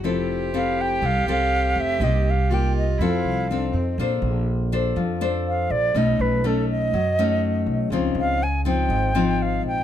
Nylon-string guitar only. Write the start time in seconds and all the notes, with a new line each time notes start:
0.04 F3 C4 E4 A4
0.54 C4 E4 A4
1.03 C3
1.28 C4 A4
2.01 C3 A#3 D#4 G4
2.51 A#3 D#4 G4
3.01 F3 C4 A4
3.51 C4 D#4 A4
3.99 A#3 D4 A4 C5
4.72 D4 A4 C5
4.96 F3
5.21 D4 A4 C5
5.95 B2 A3 C#4 D#4
6.44 A3 C#4 D#4
6.94 F#3
7.19 A3 C#4 D#4
7.92 C#3 F3 C4 D#4
8.65 F3 C4 D#4
8.90 G#2
9.15 F3 C4 D#4